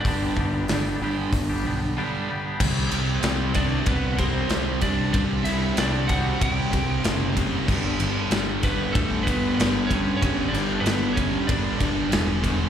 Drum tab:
CC |--------|x-------|--------|x-------|
RD |--------|-xxxxxxx|xxxxxxxx|-xxxxxxx|
HH |o-o-o---|--------|--------|--------|
SD |--o-----|--o---o-|--o---o-|--o---o-|
BD |oo--o---|o--ooo-o|o--ooo-o|o--ooo-o|

CC |--------|
RD |xxxxxxxx|
HH |--------|
SD |--o---o-|
BD |o--ooo-o|